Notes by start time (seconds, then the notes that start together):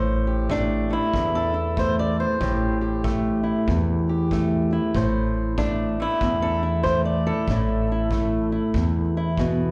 Already playing: A1 A2 C5
0.27 G4
0.49 A3 D4, kick
0.90 A3 E4
1.14 E2, kick
1.35 A4
1.54 E4
1.77 A3 C5, kick
1.99 D5
2.20 C5
2.41 A1 A2 G4, kick
2.81 G4
3.04 A3, kick
3.43 E4
3.68 E2, kick
4.09 G4
4.31 A3, kick
4.73 E4
4.95 A1 A2 C5, kick
5.58 A3 D4, kick
6.00 A3 E4
6.21 E2, kick
6.42 A4
6.63 E4
6.83 A3 C5, kick
7.05 D5
7.26 E4 A4
7.48 A1 A2 E4, kick
7.92 E4
8.11 A3, kick
8.52 E4
8.74 E2, kick
9.17 E4
9.38 B2, kick